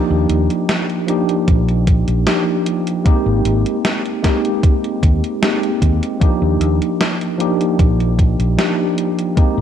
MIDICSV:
0, 0, Header, 1, 5, 480
1, 0, Start_track
1, 0, Key_signature, -3, "major"
1, 0, Tempo, 789474
1, 1858, Time_signature, 4, 2, 24, 8
1, 5844, End_track
2, 0, Start_track
2, 0, Title_t, "Tine electric piano"
2, 0, Program_c, 0, 4
2, 0, Note_on_c, 0, 53, 99
2, 0, Note_on_c, 0, 58, 90
2, 0, Note_on_c, 0, 62, 90
2, 0, Note_on_c, 0, 63, 89
2, 0, Note_on_c, 0, 67, 104
2, 70, Control_c, 0, 64, 127
2, 626, Note_off_c, 0, 53, 0
2, 628, Note_off_c, 0, 58, 0
2, 631, Note_off_c, 0, 62, 0
2, 633, Note_off_c, 0, 63, 0
2, 635, Note_off_c, 0, 67, 0
2, 649, Note_on_c, 0, 53, 88
2, 654, Note_on_c, 0, 58, 84
2, 657, Note_on_c, 0, 62, 82
2, 663, Note_on_c, 0, 63, 79
2, 667, Note_on_c, 0, 67, 102
2, 1346, Note_off_c, 0, 53, 0
2, 1348, Note_off_c, 0, 58, 0
2, 1350, Note_off_c, 0, 62, 0
2, 1353, Note_off_c, 0, 63, 0
2, 1355, Note_off_c, 0, 67, 0
2, 1374, Note_on_c, 0, 53, 75
2, 1376, Note_on_c, 0, 58, 70
2, 1379, Note_on_c, 0, 62, 69
2, 1381, Note_on_c, 0, 63, 69
2, 1383, Note_on_c, 0, 67, 87
2, 1829, Note_off_c, 0, 53, 0
2, 1830, Note_off_c, 0, 58, 0
2, 1831, Note_off_c, 0, 62, 0
2, 1832, Note_off_c, 0, 63, 0
2, 1833, Note_off_c, 0, 67, 0
2, 1850, Note_on_c, 0, 56, 95
2, 1853, Note_on_c, 0, 58, 93
2, 1858, Note_on_c, 0, 60, 89
2, 1863, Note_on_c, 0, 63, 89
2, 1866, Control_c, 0, 64, 0
2, 1868, Note_on_c, 0, 67, 108
2, 1987, Control_c, 0, 64, 127
2, 2547, Note_off_c, 0, 56, 0
2, 2548, Note_off_c, 0, 58, 0
2, 2551, Note_off_c, 0, 60, 0
2, 2553, Note_off_c, 0, 63, 0
2, 2556, Note_off_c, 0, 67, 0
2, 2568, Note_on_c, 0, 56, 90
2, 2572, Note_on_c, 0, 58, 83
2, 2576, Note_on_c, 0, 60, 80
2, 2581, Note_on_c, 0, 63, 82
2, 2586, Note_on_c, 0, 67, 104
2, 3266, Note_off_c, 0, 56, 0
2, 3268, Note_off_c, 0, 58, 0
2, 3270, Note_off_c, 0, 60, 0
2, 3272, Note_off_c, 0, 63, 0
2, 3275, Note_off_c, 0, 67, 0
2, 3293, Note_on_c, 0, 56, 79
2, 3295, Note_on_c, 0, 58, 73
2, 3298, Note_on_c, 0, 60, 72
2, 3299, Note_on_c, 0, 63, 72
2, 3302, Note_on_c, 0, 67, 89
2, 3748, Note_off_c, 0, 56, 0
2, 3749, Note_off_c, 0, 58, 0
2, 3750, Note_off_c, 0, 60, 0
2, 3751, Note_off_c, 0, 63, 0
2, 3753, Note_off_c, 0, 67, 0
2, 3769, Note_on_c, 0, 53, 97
2, 3772, Note_on_c, 0, 58, 91
2, 3777, Note_on_c, 0, 62, 91
2, 3782, Note_on_c, 0, 63, 89
2, 3785, Control_c, 0, 64, 0
2, 3787, Note_on_c, 0, 67, 106
2, 3898, Control_c, 0, 64, 127
2, 4466, Note_off_c, 0, 53, 0
2, 4468, Note_off_c, 0, 58, 0
2, 4470, Note_off_c, 0, 62, 0
2, 4473, Note_off_c, 0, 63, 0
2, 4475, Note_off_c, 0, 67, 0
2, 4487, Note_on_c, 0, 53, 90
2, 4491, Note_on_c, 0, 58, 83
2, 4496, Note_on_c, 0, 62, 86
2, 4501, Note_on_c, 0, 63, 80
2, 4505, Note_on_c, 0, 67, 101
2, 5185, Note_off_c, 0, 53, 0
2, 5187, Note_off_c, 0, 58, 0
2, 5190, Note_off_c, 0, 62, 0
2, 5192, Note_off_c, 0, 63, 0
2, 5194, Note_off_c, 0, 67, 0
2, 5213, Note_on_c, 0, 53, 79
2, 5215, Note_on_c, 0, 58, 69
2, 5217, Note_on_c, 0, 62, 72
2, 5220, Note_on_c, 0, 63, 72
2, 5222, Note_on_c, 0, 67, 83
2, 5668, Note_off_c, 0, 53, 0
2, 5669, Note_off_c, 0, 58, 0
2, 5670, Note_off_c, 0, 62, 0
2, 5672, Note_off_c, 0, 63, 0
2, 5673, Note_off_c, 0, 67, 0
2, 5687, Note_on_c, 0, 56, 92
2, 5692, Note_on_c, 0, 58, 88
2, 5696, Note_on_c, 0, 60, 88
2, 5701, Note_on_c, 0, 63, 92
2, 5705, Note_on_c, 0, 67, 104
2, 5706, Control_c, 0, 64, 0
2, 5830, Control_c, 0, 64, 127
2, 5844, Note_off_c, 0, 56, 0
2, 5844, Note_off_c, 0, 58, 0
2, 5844, Note_off_c, 0, 60, 0
2, 5844, Note_off_c, 0, 63, 0
2, 5844, Note_off_c, 0, 67, 0
2, 5844, End_track
3, 0, Start_track
3, 0, Title_t, "Fingered electric bass"
3, 0, Program_c, 1, 33
3, 63, Note_on_c, 1, 39, 98
3, 161, Note_off_c, 1, 39, 0
3, 178, Note_on_c, 1, 39, 89
3, 284, Note_off_c, 1, 39, 0
3, 898, Note_on_c, 1, 34, 83
3, 1233, Note_off_c, 1, 34, 0
3, 1264, Note_on_c, 1, 34, 90
3, 1361, Note_off_c, 1, 34, 0
3, 1983, Note_on_c, 1, 32, 97
3, 2080, Note_off_c, 1, 32, 0
3, 2097, Note_on_c, 1, 32, 89
3, 2204, Note_off_c, 1, 32, 0
3, 3058, Note_on_c, 1, 39, 95
3, 3165, Note_off_c, 1, 39, 0
3, 3538, Note_on_c, 1, 39, 100
3, 3644, Note_off_c, 1, 39, 0
3, 3902, Note_on_c, 1, 39, 96
3, 4000, Note_off_c, 1, 39, 0
3, 4016, Note_on_c, 1, 39, 87
3, 4123, Note_off_c, 1, 39, 0
3, 4737, Note_on_c, 1, 34, 81
3, 5073, Note_off_c, 1, 34, 0
3, 5103, Note_on_c, 1, 34, 89
3, 5200, Note_off_c, 1, 34, 0
3, 5822, Note_on_c, 1, 32, 95
3, 5844, Note_off_c, 1, 32, 0
3, 5844, End_track
4, 0, Start_track
4, 0, Title_t, "Muted fingered electric bass strokes"
4, 1858, Note_on_c, 9, 29, 42
4, 1919, Note_off_c, 9, 29, 0
4, 3778, Note_on_c, 9, 29, 43
4, 3838, Note_off_c, 9, 29, 0
4, 5697, Note_on_c, 9, 29, 43
4, 5758, Note_off_c, 9, 29, 0
4, 5844, End_track
5, 0, Start_track
5, 0, Title_t, "Drums"
5, 179, Note_on_c, 9, 42, 77
5, 240, Note_off_c, 9, 42, 0
5, 305, Note_on_c, 9, 42, 49
5, 366, Note_off_c, 9, 42, 0
5, 419, Note_on_c, 9, 38, 118
5, 419, Note_on_c, 9, 42, 80
5, 480, Note_off_c, 9, 38, 0
5, 480, Note_off_c, 9, 42, 0
5, 545, Note_on_c, 9, 42, 37
5, 606, Note_off_c, 9, 42, 0
5, 659, Note_on_c, 9, 42, 87
5, 719, Note_off_c, 9, 42, 0
5, 785, Note_on_c, 9, 42, 53
5, 845, Note_off_c, 9, 42, 0
5, 899, Note_on_c, 9, 36, 109
5, 899, Note_on_c, 9, 42, 80
5, 959, Note_off_c, 9, 36, 0
5, 960, Note_off_c, 9, 42, 0
5, 1025, Note_on_c, 9, 42, 38
5, 1086, Note_off_c, 9, 42, 0
5, 1138, Note_on_c, 9, 42, 79
5, 1139, Note_on_c, 9, 36, 100
5, 1199, Note_off_c, 9, 42, 0
5, 1200, Note_off_c, 9, 36, 0
5, 1263, Note_on_c, 9, 42, 52
5, 1324, Note_off_c, 9, 42, 0
5, 1378, Note_on_c, 9, 38, 118
5, 1378, Note_on_c, 9, 42, 83
5, 1439, Note_off_c, 9, 38, 0
5, 1439, Note_off_c, 9, 42, 0
5, 1619, Note_on_c, 9, 42, 84
5, 1680, Note_off_c, 9, 42, 0
5, 1745, Note_on_c, 9, 42, 58
5, 1806, Note_off_c, 9, 42, 0
5, 1858, Note_on_c, 9, 36, 113
5, 1858, Note_on_c, 9, 42, 76
5, 1919, Note_off_c, 9, 36, 0
5, 1919, Note_off_c, 9, 42, 0
5, 2099, Note_on_c, 9, 42, 76
5, 2160, Note_off_c, 9, 42, 0
5, 2226, Note_on_c, 9, 42, 52
5, 2286, Note_off_c, 9, 42, 0
5, 2339, Note_on_c, 9, 38, 118
5, 2339, Note_on_c, 9, 42, 82
5, 2400, Note_off_c, 9, 38, 0
5, 2400, Note_off_c, 9, 42, 0
5, 2466, Note_on_c, 9, 42, 34
5, 2527, Note_off_c, 9, 42, 0
5, 2578, Note_on_c, 9, 36, 62
5, 2580, Note_on_c, 9, 38, 66
5, 2580, Note_on_c, 9, 42, 85
5, 2639, Note_off_c, 9, 36, 0
5, 2641, Note_off_c, 9, 38, 0
5, 2641, Note_off_c, 9, 42, 0
5, 2705, Note_on_c, 9, 42, 51
5, 2766, Note_off_c, 9, 42, 0
5, 2818, Note_on_c, 9, 36, 124
5, 2820, Note_on_c, 9, 42, 81
5, 2879, Note_off_c, 9, 36, 0
5, 2880, Note_off_c, 9, 42, 0
5, 2945, Note_on_c, 9, 42, 37
5, 3006, Note_off_c, 9, 42, 0
5, 3058, Note_on_c, 9, 36, 105
5, 3060, Note_on_c, 9, 42, 82
5, 3119, Note_off_c, 9, 36, 0
5, 3121, Note_off_c, 9, 42, 0
5, 3186, Note_on_c, 9, 42, 49
5, 3247, Note_off_c, 9, 42, 0
5, 3300, Note_on_c, 9, 38, 127
5, 3300, Note_on_c, 9, 42, 88
5, 3360, Note_off_c, 9, 38, 0
5, 3360, Note_off_c, 9, 42, 0
5, 3425, Note_on_c, 9, 42, 36
5, 3486, Note_off_c, 9, 42, 0
5, 3538, Note_on_c, 9, 36, 63
5, 3539, Note_on_c, 9, 42, 84
5, 3599, Note_off_c, 9, 36, 0
5, 3600, Note_off_c, 9, 42, 0
5, 3666, Note_on_c, 9, 42, 58
5, 3726, Note_off_c, 9, 42, 0
5, 3778, Note_on_c, 9, 36, 114
5, 3779, Note_on_c, 9, 42, 79
5, 3839, Note_off_c, 9, 36, 0
5, 3840, Note_off_c, 9, 42, 0
5, 4019, Note_on_c, 9, 42, 77
5, 4080, Note_off_c, 9, 42, 0
5, 4146, Note_on_c, 9, 42, 50
5, 4206, Note_off_c, 9, 42, 0
5, 4260, Note_on_c, 9, 38, 113
5, 4260, Note_on_c, 9, 42, 74
5, 4321, Note_off_c, 9, 38, 0
5, 4321, Note_off_c, 9, 42, 0
5, 4385, Note_on_c, 9, 42, 36
5, 4446, Note_off_c, 9, 42, 0
5, 4500, Note_on_c, 9, 42, 84
5, 4561, Note_off_c, 9, 42, 0
5, 4625, Note_on_c, 9, 42, 51
5, 4686, Note_off_c, 9, 42, 0
5, 4738, Note_on_c, 9, 36, 125
5, 4739, Note_on_c, 9, 42, 76
5, 4798, Note_off_c, 9, 36, 0
5, 4800, Note_off_c, 9, 42, 0
5, 4866, Note_on_c, 9, 42, 36
5, 4926, Note_off_c, 9, 42, 0
5, 4978, Note_on_c, 9, 36, 98
5, 4980, Note_on_c, 9, 42, 78
5, 5038, Note_off_c, 9, 36, 0
5, 5041, Note_off_c, 9, 42, 0
5, 5105, Note_on_c, 9, 42, 52
5, 5166, Note_off_c, 9, 42, 0
5, 5220, Note_on_c, 9, 38, 124
5, 5220, Note_on_c, 9, 42, 81
5, 5281, Note_off_c, 9, 38, 0
5, 5281, Note_off_c, 9, 42, 0
5, 5459, Note_on_c, 9, 42, 85
5, 5520, Note_off_c, 9, 42, 0
5, 5585, Note_on_c, 9, 42, 53
5, 5646, Note_off_c, 9, 42, 0
5, 5698, Note_on_c, 9, 36, 113
5, 5699, Note_on_c, 9, 42, 73
5, 5759, Note_off_c, 9, 36, 0
5, 5760, Note_off_c, 9, 42, 0
5, 5844, End_track
0, 0, End_of_file